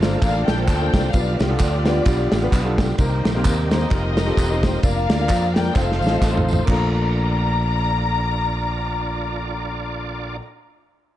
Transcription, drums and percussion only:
0.02 snare loud
0.02 ride medium
0.02 tambourine medium
0.22 kick loud
0.22 clap medium
0.22 ride medium
0.22 tambourine medium
0.48 snare loud
0.48 ride medium
0.48 tambourine medium
0.68 kick medium
0.68 clap medium
0.68 ride medium
0.68 tambourine medium
0.94 kick medium
0.94 snare loud
0.94 ride medium
0.94 tambourine medium
1.13 kick loud
1.13 ride medium
1.13 tambourine medium
1.39 snare loud
1.39 ride medium
1.39 tambourine medium
1.59 kick medium
1.59 clap loud
1.59 ride medium
1.59 tambourine loud
1.86 snare loud
1.86 ride medium
1.86 tambourine medium
2.05 kick loud
2.05 clap medium
2.05 ride medium
2.05 tambourine medium
2.32 snare loud
2.32 ride medium
2.32 tambourine medium
2.52 kick medium
2.52 clap loud
2.52 ride medium
2.52 tambourine medium
2.78 kick medium
2.78 snare loud
2.78 ride medium
2.78 tambourine medium
2.98 kick loud
2.98 ride medium
2.98 tambourine medium
3.25 snare loud
3.25 ride medium
3.25 tambourine medium
3.45 kick medium
3.45 clap loud
3.45 ride medium
3.45 tambourine loud
3.71 snare loud
3.71 ride medium
3.71 tambourine medium
3.91 kick loud
3.91 clap medium
3.91 ride medium
3.91 tambourine medium
4.17 snare loud
4.17 ride medium
4.17 tambourine medium
4.37 kick medium
4.37 clap medium
4.37 ride medium
4.37 tambourine medium
4.63 kick medium
4.63 snare loud
4.63 ride medium
4.63 tambourine medium
4.83 kick loud
4.83 ride medium
4.83 tambourine medium
5.10 snare loud
5.10 ride medium
5.10 tambourine medium
5.29 kick medium
5.29 clap loud
5.29 ride medium
5.29 tambourine loud
5.56 snare loud
5.56 ride medium
5.56 tambourine medium
5.75 kick loud
5.75 snare medium
5.75 clap medium
5.75 tambourine medium
5.92 snare medium
6.02 tambourine medium
6.07 snare medium
6.22 kick medium
6.22 snare medium
6.22 clap medium
6.22 tambourine loud
6.37 floor tom medium
6.48 tambourine medium
6.53 floor tom loud
6.68 kick loud
6.68 clap loud
6.68 crash medium

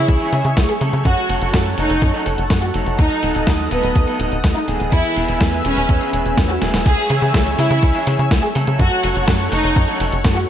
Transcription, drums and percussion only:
0.08 kick loud
0.08 closed hi-hat medium
0.08 cabasa soft
0.20 closed hi-hat soft
0.33 closed hi-hat medium
0.33 cabasa medium
0.45 closed hi-hat soft
0.45 cabasa soft
0.57 kick loud
0.57 snare loud
0.57 closed hi-hat medium
0.57 cabasa soft
0.69 closed hi-hat soft
0.81 closed hi-hat medium
0.81 cabasa medium
0.93 closed hi-hat soft
0.93 cabasa soft
1.05 kick loud
1.05 closed hi-hat medium
1.05 cabasa soft
1.17 closed hi-hat soft
1.17 cabasa soft
1.29 closed hi-hat medium
1.29 cabasa medium
1.42 closed hi-hat soft
1.42 cabasa soft
1.54 kick loud
1.54 snare loud
1.54 closed hi-hat medium
1.54 cabasa soft
1.66 closed hi-hat soft
1.78 closed hi-hat medium
1.78 cabasa medium
1.90 closed hi-hat soft
1.90 cabasa soft
2.02 kick loud
2.02 closed hi-hat medium
2.02 cabasa soft
2.14 closed hi-hat soft
2.26 closed hi-hat medium
2.26 cabasa medium
2.38 closed hi-hat soft
2.38 cabasa soft
2.50 kick loud
2.50 snare loud
2.50 closed hi-hat medium
2.50 cabasa soft
2.62 closed hi-hat soft
2.74 closed hi-hat medium
2.74 cabasa medium
2.87 closed hi-hat soft
2.87 cabasa soft
2.99 kick loud
2.99 closed hi-hat medium
2.99 cabasa soft
3.11 closed hi-hat soft
3.11 cabasa soft
3.23 closed hi-hat medium
3.23 cabasa medium
3.35 closed hi-hat soft
3.35 cabasa soft
3.47 kick loud
3.47 snare loud
3.47 closed hi-hat medium
3.47 cabasa soft
3.59 closed hi-hat soft
3.71 closed hi-hat medium
3.71 cabasa medium
3.83 closed hi-hat soft
3.83 cabasa soft
3.95 kick loud
3.95 closed hi-hat medium
3.95 cabasa soft
4.08 closed hi-hat soft
4.20 closed hi-hat medium
4.20 cabasa medium
4.32 closed hi-hat soft
4.32 cabasa soft
4.44 kick loud
4.44 snare loud
4.44 closed hi-hat medium
4.44 cabasa soft
4.56 closed hi-hat soft
4.68 closed hi-hat medium
4.68 cabasa medium
4.80 closed hi-hat soft
4.80 cabasa soft
4.92 kick loud
4.92 closed hi-hat medium
4.92 cabasa soft
5.04 closed hi-hat soft
5.04 cabasa soft
5.16 closed hi-hat medium
5.16 cabasa medium
5.29 closed hi-hat soft
5.29 cabasa soft
5.41 kick loud
5.41 snare loud
5.41 closed hi-hat medium
5.41 cabasa soft
5.53 closed hi-hat soft
5.65 closed hi-hat medium
5.65 cabasa medium
5.77 closed hi-hat soft
5.77 cabasa soft
5.89 kick loud
5.89 closed hi-hat medium
5.89 cabasa soft
6.01 closed hi-hat soft
6.01 cabasa soft
6.13 closed hi-hat medium
6.13 cabasa medium
6.26 closed hi-hat soft
6.26 cabasa soft
6.38 kick loud
6.38 snare loud
6.38 closed hi-hat medium
6.38 cabasa soft
6.50 closed hi-hat soft
6.50 cabasa soft
6.62 snare medium
6.62 closed hi-hat medium
6.62 cabasa medium
6.74 snare loud
6.74 closed hi-hat soft
6.74 cabasa soft
6.86 kick loud
6.86 closed hi-hat medium
6.86 crash loud
6.86 cabasa soft
6.98 closed hi-hat soft
6.98 cabasa soft
7.10 open hi-hat loud
7.10 cabasa medium
7.22 closed hi-hat soft
7.22 cabasa soft
7.34 kick loud
7.34 snare loud
7.34 closed hi-hat medium
7.34 cabasa soft
7.47 closed hi-hat soft
7.47 cabasa soft
7.59 open hi-hat loud
7.59 cabasa medium
7.71 closed hi-hat soft
7.71 cabasa soft
7.83 kick loud
7.83 closed hi-hat medium
7.83 cabasa soft
7.95 closed hi-hat soft
7.95 cabasa soft
8.07 open hi-hat loud
8.07 cabasa medium
8.19 closed hi-hat soft
8.19 cabasa soft
8.31 kick loud
8.31 snare loud
8.31 closed hi-hat medium
8.31 cabasa soft
8.43 closed hi-hat soft
8.43 cabasa soft
8.55 open hi-hat loud
8.55 cabasa medium
8.67 closed hi-hat soft
8.67 cabasa soft
8.79 kick loud
8.79 closed hi-hat medium
8.79 cabasa soft
8.91 closed hi-hat soft
8.91 cabasa soft
9.04 open hi-hat loud
9.04 cabasa medium
9.16 closed hi-hat soft
9.16 cabasa soft
9.28 kick loud
9.28 snare loud
9.28 closed hi-hat medium
9.28 cabasa soft
9.40 closed hi-hat soft
9.40 cabasa soft
9.52 open hi-hat loud
9.52 cabasa medium
9.64 closed hi-hat soft
9.64 cabasa soft
9.76 kick loud
9.76 closed hi-hat medium
9.76 cabasa soft
9.88 closed hi-hat soft
9.88 cabasa soft
10.00 open hi-hat loud
10.00 cabasa medium
10.12 closed hi-hat soft
10.12 cabasa soft
10.25 kick loud
10.25 snare loud
10.25 closed hi-hat medium
10.25 cabasa soft
10.37 closed hi-hat soft
10.37 cabasa soft

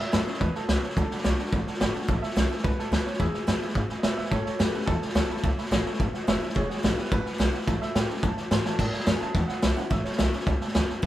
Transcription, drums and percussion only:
0.13 snare loud
0.13 hi-hat pedal medium
0.27 snare soft
0.34 snare soft
0.41 kick loud
0.41 snare soft
0.55 snare soft
0.69 snare loud
0.69 hi-hat pedal medium
0.83 snare soft
0.90 snare soft
0.97 kick loud
0.97 snare soft
1.11 snare soft
1.18 snare soft
1.24 snare loud
1.24 hi-hat pedal medium
1.39 snare soft
1.46 snare soft
1.53 kick loud
1.53 snare soft
1.67 snare soft
1.74 snare soft
1.81 snare loud
1.81 hi-hat pedal medium
1.95 snare soft
2.02 snare soft
2.09 kick loud
2.09 snare soft
2.23 snare soft
2.30 snare soft
2.37 snare loud
2.37 hi-hat pedal medium
2.51 snare soft
2.58 snare soft
2.64 kick loud
2.64 snare soft
2.79 snare soft
2.93 snare loud
2.93 hi-hat pedal medium
3.06 snare soft
3.13 snare soft
3.20 kick loud
3.20 snare soft
3.34 snare soft
3.48 snare loud
3.48 hi-hat pedal medium
3.62 snare soft
3.68 snare soft
3.75 kick loud
3.75 snare soft
3.89 snare soft
4.03 snare loud
4.03 hi-hat pedal medium
4.18 snare soft
4.25 snare soft
4.32 kick medium
4.32 snare soft
4.46 snare soft
4.60 snare loud
4.60 hi-hat pedal medium
4.74 snare soft
4.81 snare soft
4.88 kick loud
4.88 snare soft
5.02 snare soft
5.09 snare soft
5.15 snare loud
5.15 hi-hat pedal medium
5.30 snare soft
5.37 snare soft
5.43 kick loud
5.43 snare soft
5.58 snare soft
5.65 snare soft
5.72 snare loud
5.72 hi-hat pedal medium
5.86 snare soft
5.93 snare soft
6.00 kick loud
6.00 snare soft
6.14 snare soft
6.28 snare loud
6.28 hi-hat pedal medium
6.42 snare soft
6.49 snare soft
6.56 kick loud
6.56 snare soft
6.70 snare soft
6.77 snare soft
6.84 snare loud
6.84 hi-hat pedal medium
6.98 snare soft
7.05 snare soft
7.12 kick loud
7.12 snare soft
7.26 snare soft
7.33 snare soft
7.40 snare loud
7.40 hi-hat pedal medium
7.54 snare soft
7.61 snare soft
7.68 kick loud
7.68 snare soft
7.82 snare soft
7.95 snare loud
7.95 hi-hat pedal medium
8.09 snare soft
8.16 snare soft
8.23 kick loud
8.23 snare soft
8.37 snare soft
8.51 snare loud
8.51 hi-hat pedal medium
8.65 snare medium
8.79 kick loud
8.79 snare soft
8.79 crash medium
8.93 snare soft
9.00 snare soft
9.07 snare loud
9.07 hi-hat pedal medium
9.21 snare soft
9.35 kick loud
9.35 snare soft
9.49 snare soft
9.62 snare loud
9.62 hi-hat pedal medium
9.77 snare soft
9.91 kick medium
9.91 snare soft
10.05 snare soft
10.12 snare soft
10.19 snare loud
10.19 hi-hat pedal medium
10.33 snare soft
10.40 snare soft
10.47 kick loud
10.47 snare soft
10.61 snare soft
10.68 snare soft
10.75 snare loud
10.75 hi-hat pedal medium
10.89 snare soft
11.03 kick loud
11.03 snare soft

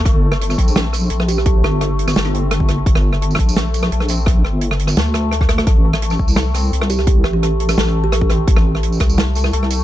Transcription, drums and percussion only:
0.05 kick loud
0.05 cross-stick soft
0.05 closed hi-hat medium
0.32 cross-stick medium
0.41 closed hi-hat medium
0.50 cross-stick soft
0.50 tambourine soft
0.58 kick medium
0.58 closed hi-hat medium
0.68 tambourine medium
0.76 cross-stick medium
0.76 snare loud
0.76 closed hi-hat medium
0.93 cross-stick soft
0.93 closed hi-hat medium
0.93 tambourine medium
1.10 closed hi-hat medium
1.20 cross-stick medium
1.28 closed hi-hat medium
1.28 tambourine medium
1.38 cross-stick soft
1.46 kick loud
1.46 closed hi-hat medium
1.64 cross-stick medium
1.81 cross-stick medium
1.81 closed hi-hat medium
1.99 closed hi-hat medium
2.08 cross-stick medium
2.08 tambourine medium
2.16 snare loud
2.16 closed hi-hat medium
2.25 cross-stick medium
2.35 closed hi-hat medium
2.51 cross-stick medium
2.51 closed hi-hat medium
2.60 kick medium
2.68 cross-stick medium
2.68 closed hi-hat medium
2.86 kick loud
2.86 closed hi-hat medium
2.95 cross-stick medium
3.13 cross-stick medium
3.22 closed hi-hat medium
3.31 tambourine soft
3.35 kick medium
3.35 cross-stick medium
3.39 closed hi-hat medium
3.49 tambourine medium
3.57 cross-stick medium
3.57 snare loud
3.57 closed hi-hat medium
3.74 closed hi-hat medium
3.74 tambourine medium
3.83 cross-stick medium
3.92 closed hi-hat medium
4.00 cross-stick medium
4.08 closed hi-hat medium
4.08 tambourine medium
4.26 kick loud
4.26 cross-stick medium
4.26 closed hi-hat medium
4.45 cross-stick medium
4.61 closed hi-hat medium
4.71 cross-stick medium
4.79 closed hi-hat medium
4.87 cross-stick medium
4.87 tambourine medium
4.97 snare loud
4.97 closed hi-hat medium
5.14 cross-stick medium
5.14 closed hi-hat medium
5.31 cross-stick medium
5.31 closed hi-hat medium
5.41 kick medium
5.41 cross-stick medium
5.49 cross-stick loud
5.49 closed hi-hat medium
5.58 cross-stick medium
5.67 kick loud
5.67 cross-stick soft
5.67 closed hi-hat medium
5.93 cross-stick medium
6.02 closed hi-hat medium
6.10 cross-stick medium
6.10 tambourine soft
6.19 kick medium
6.28 tambourine medium
6.36 cross-stick medium
6.36 snare loud
6.36 closed hi-hat medium
6.54 cross-stick medium
6.54 closed hi-hat medium
6.54 tambourine medium
6.73 closed hi-hat medium
6.82 cross-stick medium
6.90 closed hi-hat medium
6.90 tambourine medium
6.99 cross-stick soft
7.07 kick loud
7.07 closed hi-hat loud
7.24 cross-stick medium
7.43 cross-stick medium
7.43 closed hi-hat medium
7.60 closed hi-hat medium
7.69 cross-stick medium
7.69 tambourine medium
7.78 snare loud
7.78 closed hi-hat medium
7.87 cross-stick soft
8.12 cross-stick medium
8.12 closed hi-hat loud
8.21 kick medium
8.30 cross-stick medium
8.30 closed hi-hat medium
8.48 kick loud
8.48 closed hi-hat medium
8.56 cross-stick medium
8.75 cross-stick medium
8.83 closed hi-hat medium
8.92 tambourine soft
9.00 kick medium
9.00 cross-stick medium
9.00 closed hi-hat medium
9.10 tambourine medium
9.18 cross-stick medium
9.18 snare loud
9.18 closed hi-hat medium
9.35 closed hi-hat medium
9.35 tambourine medium
9.44 cross-stick medium
9.53 closed hi-hat medium
9.63 cross-stick medium
9.70 closed hi-hat medium
9.70 tambourine medium

